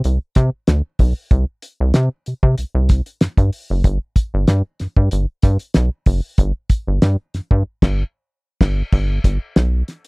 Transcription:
0.04 0.19 C2 medium
0.04 closed hi-hat medium
0.35 0.50 C3 loud
0.35 kick loud
0.35 snare soft
0.35 closed hi-hat medium
0.67 0.82 D2 medium
0.67 snare medium
0.67 closed hi-hat medium
0.99 1.13 B1 medium
0.99 kick medium
0.99 open hi-hat medium
1.31 1.45 C2 loud
1.31 kick loud
1.31 closed hi-hat medium
1.62 closed hi-hat medium
1.80 1.93 C2 medium
1.94 2.09 C3 loud
1.94 snare loud
1.94 closed hi-hat medium
2.26 2.34 C3 medium
2.26 closed hi-hat medium
2.43 2.55 C3 medium
2.43 kick medium
2.58 2.65 C2 soft
2.58 closed hi-hat medium
2.75 3.01 C2 medium
2.89 kick loud
2.89 snare soft
2.89 closed hi-hat medium
3.06 closed hi-hat medium
3.21 3.28 G2 soft
3.21 snare medium
3.21 closed hi-hat medium
3.37 3.50 G2 medium
3.37 kick loud
3.37 closed hi-hat soft
3.53 open hi-hat medium
3.70 3.83 F#1 medium
3.84 3.99 G1 medium
3.84 kick loud
3.84 closed hi-hat medium
4.16 kick medium
4.16 closed hi-hat medium
4.34 4.46 G1 loud
4.48 4.62 G2 loud
4.48 snare loud
4.48 closed hi-hat medium
4.80 4.87 G2 medium
4.80 snare soft
4.80 closed hi-hat medium
4.97 5.09 G2 medium
4.97 kick medium
5.11 5.26 G1 medium
5.11 closed hi-hat medium
5.42 5.57 G2 loud
5.42 kick loud
5.42 snare soft
5.42 closed hi-hat medium
5.59 closed hi-hat medium
5.74 5.90 B1 loud
5.74 snare medium
5.74 closed hi-hat medium
6.06 6.21 F#1 medium
6.06 kick medium
6.06 open hi-hat medium
6.38 6.52 G1 loud
6.38 kick loud
6.38 closed hi-hat medium
6.70 kick medium
6.70 closed hi-hat medium
6.87 7.00 G1 medium
7.02 7.17 G2 loud
7.02 snare loud
7.02 closed hi-hat medium
7.34 7.41 G2 soft
7.34 snare soft
7.34 closed hi-hat medium
7.51 7.63 G2 loud
7.51 kick loud
7.82 8.04 G1 loud
7.82 kick loud
7.82 snare loud
7.82 crash medium
8.61 8.83 G1 medium
8.61 kick loud
8.61 snare loud
8.61 crash medium
8.92 9.19 G1 loud
8.92 kick loud
8.92 crash loud
9.24 9.38 G1 medium
9.24 kick medium
9.24 closed hi-hat medium
9.56 9.83 B1 medium
9.56 snare loud
9.56 closed hi-hat medium
9.88 snare soft
9.88 closed hi-hat medium
10.05 closed hi-hat soft

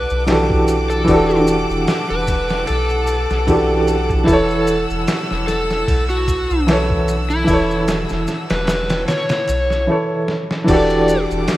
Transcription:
0.00 0.22 E3 medium
0.00 0.23 D4 medium
0.00 0.25 F#4 medium
0.00 0.26 G4 medium
0.00 0.27 A4 medium
0.00 9.84 A4 medium
0.00 0.22 B4 medium
0.00 9.83 F#5 medium
0.00 4.23 D6 medium
0.10 1.05 B1 medium
0.10 maracas soft
0.26 1.03 E3 medium
0.26 1.03 D4 medium
0.26 1.04 F#4 medium
0.26 1.05 G4 medium
0.26 snare loud
0.26 ride medium
0.26 maracas soft
0.31 1.05 A4 medium
0.50 kick medium
0.68 ride medium
0.68 maracas medium
0.90 1.42 A4 medium
0.90 maracas soft
1.04 1.66 E1 loud
1.04 3.42 E3 medium
1.04 3.43 D4 medium
1.04 3.44 F#4 medium
1.04 kick loud
1.04 ride medium
1.04 maracas soft
1.11 3.45 G4 medium
1.11 3.46 A4 loud
1.31 maracas soft
1.47 ride medium
1.47 maracas medium
1.70 1.86 E1 medium
1.70 maracas soft
1.88 snare loud
1.88 ride medium
1.88 maracas soft
2.10 2.65 E1 medium
2.10 2.63 B4 medium
2.10 ride soft
2.27 kick medium
2.27 ride medium
2.27 maracas medium
2.49 snare medium
2.49 maracas soft
2.67 3.27 B1 medium
2.67 4.13 A4 medium
2.67 ride medium
2.67 maracas soft
2.90 ride soft
2.90 maracas soft
3.07 ride medium
3.07 maracas medium
3.30 4.25 B1 medium
3.30 snare soft
3.30 maracas soft
3.47 4.22 E3 medium
3.47 4.24 D4 medium
3.47 4.24 F#4 medium
3.47 4.25 G4 medium
3.47 kick loud
3.47 ride medium
3.47 maracas medium
3.51 4.25 A4 medium
3.87 ride medium
3.87 maracas medium
4.10 kick medium
4.10 maracas soft
4.24 6.62 E3 medium
4.24 6.63 E4 medium
4.24 4.83 A4 medium
4.24 9.83 E6 medium
4.24 kick loud
4.24 ride medium
4.28 4.86 E1 loud
4.28 6.64 A4 medium
4.28 maracas medium
4.33 6.66 C#5 loud
4.50 maracas soft
4.67 ride medium
4.67 maracas medium
4.90 5.06 E1 medium
4.90 maracas soft
5.08 snare loud
5.08 ride medium
5.08 maracas medium
5.31 5.85 E1 medium
5.31 snare soft
5.47 6.03 A4 medium
5.47 snare soft
5.47 ride medium
5.47 maracas medium
5.70 snare soft
5.70 maracas soft
5.88 6.46 B1 medium
5.88 kick loud
5.88 ride medium
5.88 maracas soft
6.09 6.62 F#4 medium
6.09 maracas soft
6.28 kick medium
6.28 ride medium
6.28 maracas medium
6.50 7.45 B1 medium
6.50 maracas soft
6.67 7.43 E3 medium
6.67 7.44 E4 medium
6.67 7.45 A4 medium
6.67 snare loud
6.67 ride medium
6.67 maracas soft
6.71 7.45 C#5 medium
6.90 kick loud
7.08 ride medium
7.08 maracas medium
7.30 7.82 E4 medium
7.30 maracas soft
7.44 8.06 E1 medium
7.44 9.82 E3 medium
7.44 9.83 E4 medium
7.44 kick loud
7.44 ride medium
7.44 maracas medium
7.50 9.85 A4 medium
7.50 9.86 C#5 loud
7.71 maracas soft
7.88 snare loud
7.88 ride medium
7.88 maracas medium
8.09 8.26 E1 medium
8.09 snare soft
8.09 maracas soft
8.27 snare soft
8.27 ride medium
8.27 maracas medium
8.50 9.05 E1 medium
8.50 9.03 B4 medium
8.50 snare medium
8.50 ride medium
8.50 maracas soft
8.67 snare loud
8.67 ride medium
8.67 maracas medium
8.90 snare medium
8.90 ride medium
8.90 maracas soft
9.08 9.88 C#5 medium
9.08 snare medium
9.08 ride medium
9.08 maracas soft
9.29 snare loud
9.29 ride medium
9.29 maracas soft
9.48 9.88 B1 medium
9.48 ride medium
9.48 maracas medium
9.70 snare soft
9.70 maracas soft
9.87 10.63 E3 medium
9.87 10.64 E4 medium
9.87 10.65 A4 medium
9.92 10.65 C#5 medium
10.28 snare medium
10.51 snare medium
10.64 11.57 E3 medium
10.64 11.57 D4 medium
10.64 11.57 F#5 medium
10.64 kick loud
10.64 crash medium
10.64 ride medium
10.64 maracas medium
10.68 11.26 E1 medium
10.68 11.57 F#4 medium
10.68 11.57 G4 medium
10.68 11.57 A4 medium
10.68 11.24 D5 medium
10.68 11.57 D6 loud
10.73 11.57 A4 loud
10.90 maracas soft
11.08 ride medium
11.08 maracas medium
11.31 11.46 E1 medium
11.31 maracas soft
11.48 snare loud
11.48 ride medium
11.48 maracas medium

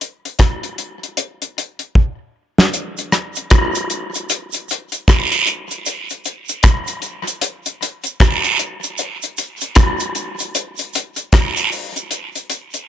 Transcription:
0.01 closed hi-hat medium
0.25 closed hi-hat soft
0.39 kick loud
0.39 cross-stick loud
0.39 closed hi-hat medium
0.63 closed hi-hat medium
0.78 closed hi-hat medium
1.03 closed hi-hat soft
1.17 closed hi-hat loud
1.42 closed hi-hat medium
1.58 closed hi-hat medium
1.79 closed hi-hat soft
1.95 kick loud
2.58 snare medium
2.74 closed hi-hat medium
2.74 cabasa medium
2.97 closed hi-hat medium
2.97 cabasa medium
3.12 cross-stick medium
3.12 closed hi-hat medium
3.12 cabasa soft
3.35 closed hi-hat soft
3.35 cabasa medium
3.50 kick loud
3.50 cross-stick loud
3.50 closed hi-hat medium
3.50 cabasa medium
3.75 closed hi-hat medium
3.75 cabasa soft
3.90 closed hi-hat medium
3.90 cabasa soft
4.14 closed hi-hat medium
4.14 cabasa medium
4.29 closed hi-hat loud
4.29 cabasa medium
4.52 closed hi-hat medium
4.52 cabasa medium
4.69 closed hi-hat medium
4.69 cabasa medium
4.92 closed hi-hat medium
4.92 cabasa soft
5.08 kick loud
5.08 cross-stick loud
5.08 closed hi-hat medium
5.08 cabasa medium
5.08 long guiro medium
5.32 closed hi-hat medium
5.32 cabasa soft
5.47 closed hi-hat medium
5.47 cabasa medium
5.71 closed hi-hat soft
5.71 cabasa medium
5.86 closed hi-hat medium
5.86 cabasa medium
6.10 closed hi-hat medium
6.10 cabasa soft
6.25 closed hi-hat medium
6.25 cabasa soft
6.49 closed hi-hat soft
6.49 cabasa medium
6.63 kick loud
6.63 cross-stick loud
6.63 closed hi-hat medium
6.63 cabasa medium
6.87 closed hi-hat medium
6.87 cabasa soft
7.02 closed hi-hat medium
7.02 cabasa soft
7.27 closed hi-hat medium
7.27 cabasa medium
7.42 closed hi-hat loud
7.42 cabasa medium
7.66 closed hi-hat medium
7.66 cabasa soft
7.82 closed hi-hat medium
7.82 cabasa medium
8.04 closed hi-hat medium
8.04 cabasa medium
8.20 kick loud
8.20 cross-stick loud
8.20 closed hi-hat medium
8.20 cabasa medium
8.20 long guiro medium
8.44 closed hi-hat medium
8.44 cabasa soft
8.59 closed hi-hat medium
8.59 cabasa medium
8.84 closed hi-hat soft
8.84 cabasa medium
8.98 closed hi-hat medium
8.98 cabasa medium
9.22 closed hi-hat medium
9.22 cabasa soft
9.37 closed hi-hat medium
9.37 cabasa soft
9.61 closed hi-hat soft
9.61 cabasa medium
9.75 kick loud
9.75 cross-stick loud
9.75 closed hi-hat loud
9.75 cabasa medium
10.00 closed hi-hat medium
10.00 cabasa soft
10.15 closed hi-hat medium
10.15 cabasa medium
10.39 closed hi-hat medium
10.39 cabasa medium
10.55 closed hi-hat medium
10.55 cabasa medium
10.77 closed hi-hat medium
10.77 cabasa soft
10.94 closed hi-hat medium
10.94 cabasa medium
11.16 closed hi-hat soft
11.16 cabasa medium
11.32 kick loud
11.32 cross-stick loud
11.32 closed hi-hat medium
11.32 cabasa medium
11.32 long guiro medium
11.56 closed hi-hat medium
11.56 cabasa soft
11.72 open hi-hat medium
11.72 cabasa medium
11.96 closed hi-hat soft
11.96 cabasa medium
12.11 closed hi-hat medium
12.11 cabasa medium
12.35 closed hi-hat medium
12.35 cabasa soft
12.50 closed hi-hat medium
12.50 cabasa soft
12.74 closed hi-hat soft
12.74 cabasa medium

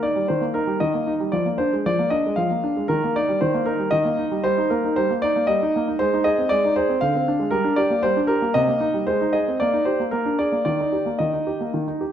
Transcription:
0.03 0.16 D#4 soft
0.03 0.26 D5 medium
0.16 0.29 G3 soft
0.28 0.41 D#3 soft
0.28 0.44 C5 soft
0.41 0.54 A#3 soft
0.54 0.68 D#4 soft
0.54 0.77 A#4 medium
0.67 0.80 G3 soft
0.80 0.93 D#3 soft
0.80 1.11 D#5 medium
0.94 1.07 A#3 soft
1.07 1.20 D#4 soft
1.20 1.32 G3 soft
1.32 1.45 F3 soft
1.32 1.47 D5 medium
1.46 1.59 A#3 soft
1.58 1.72 D4 soft
1.58 1.73 C5 medium
1.73 1.85 G#3 soft
1.86 1.97 F3 soft
1.86 2.08 D5 medium
1.99 2.11 A#3 soft
2.10 2.24 D4 soft
2.10 2.33 D#5 medium
2.26 2.38 G#3 soft
2.36 2.49 F3 soft
2.36 2.88 F5 medium
2.51 2.63 A#3 soft
2.64 2.76 D4 soft
2.77 2.89 G#3 soft
2.88 3.01 D#3 soft
2.88 3.14 A#4 medium
3.04 3.16 A#3 soft
3.16 3.28 D#4 soft
3.16 3.38 D5 medium
3.29 3.41 G3 soft
3.41 3.53 D#3 soft
3.41 3.64 C5 medium
3.54 3.67 A#3 soft
3.66 3.80 D#4 soft
3.66 3.89 A#4 medium
3.79 3.93 G3 soft
3.91 4.05 D#3 soft
3.91 4.44 D#5 medium
4.05 4.19 A#3 soft
4.19 4.32 D#4 soft
4.32 4.43 G3 soft
4.44 4.57 G3 soft
4.44 4.70 C5 medium
4.58 4.71 D#4 soft
4.70 4.84 A#3 soft
4.70 4.96 A#4 medium
4.84 4.97 D#4 soft
4.96 5.09 G3 soft
4.96 5.11 C5 medium
5.10 5.23 A#3 soft
5.22 5.36 D#4 soft
5.22 5.45 D5 medium
5.36 5.49 A#3 soft
5.47 5.60 G3 soft
5.47 5.95 D#5 medium
5.63 5.75 D#4 soft
5.76 5.88 A#3 soft
5.88 6.00 D#4 soft
5.99 6.12 G#3 soft
5.99 6.22 C5 medium
6.14 6.26 D#4 soft
6.24 6.38 G#4 soft
6.24 6.50 D#5 medium
6.38 6.52 C4 soft
6.49 6.63 G#3 soft
6.49 6.73 D5 medium
6.65 6.78 D#4 soft
6.76 6.90 G#4 soft
6.76 7.00 C5 medium
6.89 7.02 C4 soft
7.01 7.15 D3 soft
7.01 7.49 F5 medium
7.15 7.29 C4 soft
7.28 7.41 D4 soft
7.39 7.53 G#3 soft
7.51 7.65 G3 soft
7.51 7.78 A#4 medium
7.64 7.79 D4 soft
7.76 7.92 G4 soft
7.76 8.03 D5 medium
7.90 8.05 A#3 soft
8.03 8.17 G3 soft
8.03 8.19 C5 medium
8.17 8.31 D4 soft
8.27 8.43 G4 soft
8.27 8.52 A#4 medium
8.42 8.56 A#3 soft
8.54 8.68 C3 soft
8.54 9.02 D#5 medium
8.68 8.82 A#3 soft
8.80 8.95 D#4 soft
8.94 9.07 G3 soft
9.07 9.20 G#3 soft
9.07 9.33 C5 medium
9.21 9.35 D#4 soft
9.33 9.48 G#4 soft
9.33 9.57 D#5 medium
9.48 9.61 C4 soft
9.60 9.73 A#3 soft
9.60 9.83 D5 medium
9.74 9.87 D#4 soft
9.85 10.00 G4 soft
9.85 10.01 C5 medium
10.00 10.11 A#3 soft
10.11 10.26 A#3 soft
10.11 10.36 A#4 medium
10.26 10.40 D4 soft
10.39 10.53 G#4 soft
10.39 10.63 D5 medium
10.52 10.66 A#3 soft
10.65 10.79 D#3 soft
10.65 11.15 D5 medium
10.80 10.94 D#4 soft
10.92 11.07 G4 soft
11.06 11.20 A#3 soft
11.19 11.33 D#3 soft
11.19 11.69 D#5 medium
11.34 11.48 D#4 soft
11.47 11.61 G4 soft
11.61 11.75 A#3 soft
11.74 11.87 D#3 soft
11.88 12.02 D#4 soft
12.01 12.12 G4 soft

